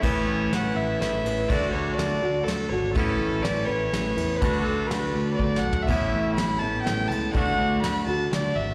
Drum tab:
CC |x-----------------|------------------|------------------|------------------|
RD |------x-----x--x--|x-----x-----x-----|x-----x-----x--x--|x-----x-----------|
SD |------o-----o-----|------o-----o-----|------o-----o-----|------o-------o---|
FT |------------------|------------------|------------------|----------------o-|
BD |o-----------------|o-----------------|o-----------------|o-----------o-----|

CC |x-----------------|------------------|
RD |------x-----x--x--|x-----x-----x-----|
SD |------o-----o-----|------o-----o-----|
FT |------------------|------------------|
BD |o-----------------|o-----------------|